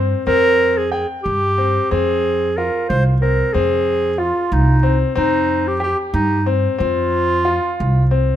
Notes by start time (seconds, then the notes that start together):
Already playing: G2 C4
0.27 F2 C4 A#4
0.77 G#4
0.92 G#4 G5
1.23 G2 G4
1.58 C4
1.91 F2 C4 G#4
2.57 F4 A#4
2.89 C2 C5
3.22 C4 A#4
3.53 F2 C4 G#4
4.18 F4
4.52 C2 D#4
4.83 C4
5.15 F2 C4 D#4
5.67 G4
5.80 G4
6.14 G2 D#4
6.46 C4
6.78 F2 C4 F4
7.45 F4
7.80 C2
8.11 C4